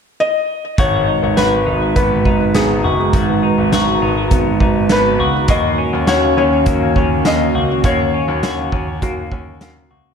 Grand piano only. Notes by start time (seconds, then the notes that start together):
0.79 G#1
1.23 G#1
1.38 G#1
1.67 G#1
1.96 G#1
2.25 G#1
2.55 G#1
2.84 F#1
3.13 G#1
3.58 G#1
3.73 G#1
4.02 G#1
4.31 G#1
4.60 G#1
4.89 G#1
5.19 C#2
5.48 D#2
5.93 D#2
6.07 D#2
6.37 D#2
6.66 D#2
6.96 D#2
7.25 D#2
7.55 C#2
7.84 D#2
8.28 D#2
8.43 D#2
8.72 D#2
9.02 D#2
9.32 D#2
9.61 D#2
9.91 C#2